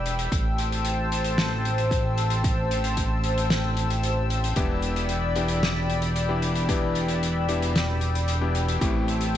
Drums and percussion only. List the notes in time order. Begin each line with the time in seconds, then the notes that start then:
0.06 closed hi-hat
0.19 closed hi-hat
0.32 kick, closed hi-hat
0.58 closed hi-hat
0.72 closed hi-hat
0.85 closed hi-hat
1.12 closed hi-hat
1.24 closed hi-hat
1.38 snare, closed hi-hat
1.65 closed hi-hat
1.78 closed hi-hat
1.91 kick, closed hi-hat
2.18 closed hi-hat
2.30 closed hi-hat
2.44 kick, closed hi-hat
2.71 closed hi-hat
2.84 closed hi-hat
2.97 kick, closed hi-hat
3.24 closed hi-hat
3.38 closed hi-hat
3.50 snare, closed hi-hat
3.77 closed hi-hat
3.90 closed hi-hat
4.03 closed hi-hat
4.30 closed hi-hat
4.44 closed hi-hat
4.56 kick, closed hi-hat
4.82 closed hi-hat
4.96 closed hi-hat
5.09 closed hi-hat
5.36 closed hi-hat
5.48 closed hi-hat
5.63 snare, closed hi-hat
5.90 closed hi-hat
6.02 closed hi-hat
6.16 closed hi-hat
6.42 closed hi-hat
6.55 closed hi-hat
6.69 kick, closed hi-hat
6.95 closed hi-hat
7.08 closed hi-hat
7.23 closed hi-hat
7.49 closed hi-hat
7.62 closed hi-hat
7.76 snare, closed hi-hat
8.01 closed hi-hat
8.15 closed hi-hat
8.28 closed hi-hat
8.55 closed hi-hat
8.68 closed hi-hat
8.81 kick, closed hi-hat
9.08 closed hi-hat
9.21 closed hi-hat